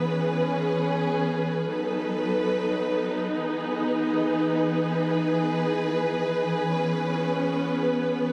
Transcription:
0, 0, Header, 1, 2, 480
1, 0, Start_track
1, 0, Key_signature, 4, "major"
1, 0, Tempo, 500000
1, 7991, End_track
2, 0, Start_track
2, 0, Title_t, "String section"
2, 0, Program_c, 0, 48
2, 0, Note_on_c, 0, 52, 81
2, 0, Note_on_c, 0, 59, 75
2, 0, Note_on_c, 0, 71, 91
2, 40, Note_on_c, 0, 61, 78
2, 40, Note_on_c, 0, 68, 79
2, 1602, Note_off_c, 0, 52, 0
2, 1602, Note_off_c, 0, 59, 0
2, 1603, Note_off_c, 0, 71, 0
2, 1624, Note_off_c, 0, 61, 0
2, 1624, Note_off_c, 0, 68, 0
2, 1640, Note_on_c, 0, 54, 79
2, 1640, Note_on_c, 0, 59, 73
2, 1640, Note_on_c, 0, 63, 77
2, 1640, Note_on_c, 0, 69, 73
2, 1640, Note_on_c, 0, 71, 94
2, 3224, Note_off_c, 0, 54, 0
2, 3224, Note_off_c, 0, 69, 0
2, 3224, Note_off_c, 0, 71, 0
2, 3240, Note_on_c, 0, 52, 79
2, 3240, Note_on_c, 0, 68, 73
2, 3240, Note_on_c, 0, 71, 93
2, 6402, Note_off_c, 0, 59, 0
2, 6402, Note_off_c, 0, 63, 0
2, 6441, Note_on_c, 0, 59, 76
2, 6441, Note_on_c, 0, 61, 73
2, 7991, Note_off_c, 0, 52, 0
2, 7991, Note_off_c, 0, 59, 0
2, 7991, Note_off_c, 0, 61, 0
2, 7991, Note_off_c, 0, 68, 0
2, 7991, Note_off_c, 0, 71, 0
2, 7991, End_track
0, 0, End_of_file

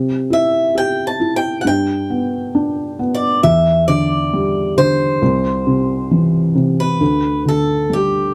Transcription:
0, 0, Header, 1, 3, 480
1, 0, Start_track
1, 0, Tempo, 894188
1, 1841, Time_signature, 4, 2, 24, 8
1, 4477, End_track
2, 0, Start_track
2, 0, Title_t, "Steel-string acoustic guitar"
2, 0, Program_c, 0, 25
2, 177, Note_on_c, 0, 76, 66
2, 414, Note_off_c, 0, 76, 0
2, 417, Note_on_c, 0, 79, 75
2, 572, Note_off_c, 0, 79, 0
2, 574, Note_on_c, 0, 81, 77
2, 730, Note_off_c, 0, 81, 0
2, 732, Note_on_c, 0, 79, 77
2, 841, Note_off_c, 0, 79, 0
2, 865, Note_on_c, 0, 78, 55
2, 893, Note_off_c, 0, 78, 0
2, 897, Note_on_c, 0, 79, 80
2, 1588, Note_off_c, 0, 79, 0
2, 1688, Note_on_c, 0, 74, 69
2, 1841, Note_off_c, 0, 74, 0
2, 1843, Note_on_c, 0, 76, 78
2, 2064, Note_off_c, 0, 76, 0
2, 2081, Note_on_c, 0, 74, 69
2, 2562, Note_off_c, 0, 74, 0
2, 2565, Note_on_c, 0, 72, 80
2, 3501, Note_off_c, 0, 72, 0
2, 3650, Note_on_c, 0, 71, 68
2, 3986, Note_off_c, 0, 71, 0
2, 4018, Note_on_c, 0, 69, 59
2, 4258, Note_off_c, 0, 69, 0
2, 4259, Note_on_c, 0, 67, 61
2, 4477, Note_off_c, 0, 67, 0
2, 4477, End_track
3, 0, Start_track
3, 0, Title_t, "Felt piano"
3, 0, Program_c, 1, 0
3, 0, Note_on_c, 1, 48, 49
3, 36, Control_c, 1, 64, 127
3, 162, Note_on_c, 1, 64, 47
3, 403, Note_on_c, 1, 67, 43
3, 636, Note_off_c, 1, 64, 0
3, 644, Note_on_c, 1, 64, 44
3, 862, Note_off_c, 1, 48, 0
3, 868, Note_off_c, 1, 67, 0
3, 876, Note_off_c, 1, 64, 0
3, 884, Note_on_c, 1, 43, 55
3, 888, Control_c, 1, 64, 0
3, 987, Control_c, 1, 64, 127
3, 1128, Note_on_c, 1, 59, 44
3, 1367, Note_on_c, 1, 62, 44
3, 1598, Note_off_c, 1, 59, 0
3, 1606, Note_on_c, 1, 59, 43
3, 1820, Note_off_c, 1, 43, 0
3, 1829, Note_off_c, 1, 62, 0
3, 1836, Note_off_c, 1, 59, 0
3, 1845, Note_on_c, 1, 40, 51
3, 1847, Control_c, 1, 64, 0
3, 1949, Control_c, 1, 64, 127
3, 2082, Note_on_c, 1, 50, 46
3, 2326, Note_on_c, 1, 55, 50
3, 2554, Note_off_c, 1, 50, 0
3, 2562, Note_on_c, 1, 50, 48
3, 2779, Note_off_c, 1, 40, 0
3, 2787, Note_off_c, 1, 55, 0
3, 2793, Note_off_c, 1, 50, 0
3, 2803, Note_on_c, 1, 36, 54
3, 2804, Control_c, 1, 64, 0
3, 2909, Control_c, 1, 64, 127
3, 3042, Note_on_c, 1, 48, 44
3, 3281, Note_on_c, 1, 52, 46
3, 3509, Note_off_c, 1, 48, 0
3, 3517, Note_on_c, 1, 48, 44
3, 3741, Note_off_c, 1, 36, 0
3, 3748, Note_off_c, 1, 52, 0
3, 3752, Note_off_c, 1, 48, 0
3, 3760, Note_on_c, 1, 38, 52
3, 3768, Control_c, 1, 64, 0
3, 3852, Control_c, 1, 64, 127
3, 4001, Note_on_c, 1, 50, 43
3, 4238, Note_on_c, 1, 55, 45
3, 4475, Note_off_c, 1, 50, 0
3, 4477, Note_off_c, 1, 38, 0
3, 4477, Note_off_c, 1, 55, 0
3, 4477, End_track
0, 0, End_of_file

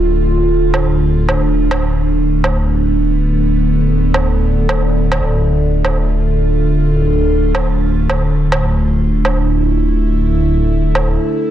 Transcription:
0, 0, Header, 1, 4, 480
1, 0, Start_track
1, 0, Tempo, 425532
1, 114, Time_signature, 4, 2, 24, 8
1, 12980, End_track
2, 0, Start_track
2, 0, Title_t, "Synth drone"
2, 0, Program_c, 0, 95
2, 0, Note_on_c, 0, 50, 82
2, 0, Note_on_c, 0, 57, 74
2, 0, Note_on_c, 0, 65, 89
2, 2023, Note_off_c, 0, 65, 0
2, 2032, Note_on_c, 0, 59, 91
2, 5862, Note_off_c, 0, 59, 0
2, 5873, Note_on_c, 0, 65, 86
2, 9702, Note_off_c, 0, 65, 0
2, 9713, Note_on_c, 0, 64, 88
2, 12980, Note_off_c, 0, 50, 0
2, 12980, Note_off_c, 0, 57, 0
2, 12980, Note_off_c, 0, 64, 0
2, 12980, End_track
3, 0, Start_track
3, 0, Title_t, "Detuned saw bass"
3, 0, Program_c, 1, 39
3, 0, Note_on_c, 1, 26, 88
3, 5853, Note_off_c, 1, 26, 0
3, 5873, Note_on_c, 1, 26, 83
3, 12593, Note_off_c, 1, 26, 0
3, 12980, End_track
4, 0, Start_track
4, 0, Title_t, "Drums"
4, 832, Note_on_c, 9, 77, 44
4, 945, Note_off_c, 9, 77, 0
4, 1451, Note_on_c, 9, 77, 49
4, 1564, Note_off_c, 9, 77, 0
4, 1930, Note_on_c, 9, 77, 74
4, 2043, Note_off_c, 9, 77, 0
4, 2753, Note_on_c, 9, 77, 49
4, 2866, Note_off_c, 9, 77, 0
4, 4674, Note_on_c, 9, 77, 48
4, 4786, Note_off_c, 9, 77, 0
4, 5292, Note_on_c, 9, 77, 53
4, 5404, Note_off_c, 9, 77, 0
4, 5772, Note_on_c, 9, 77, 79
4, 5884, Note_off_c, 9, 77, 0
4, 6594, Note_on_c, 9, 77, 48
4, 6707, Note_off_c, 9, 77, 0
4, 8513, Note_on_c, 9, 77, 50
4, 8626, Note_off_c, 9, 77, 0
4, 9131, Note_on_c, 9, 77, 50
4, 9244, Note_off_c, 9, 77, 0
4, 9612, Note_on_c, 9, 77, 77
4, 9725, Note_off_c, 9, 77, 0
4, 10434, Note_on_c, 9, 77, 49
4, 10547, Note_off_c, 9, 77, 0
4, 12354, Note_on_c, 9, 77, 44
4, 12466, Note_off_c, 9, 77, 0
4, 12980, End_track
0, 0, End_of_file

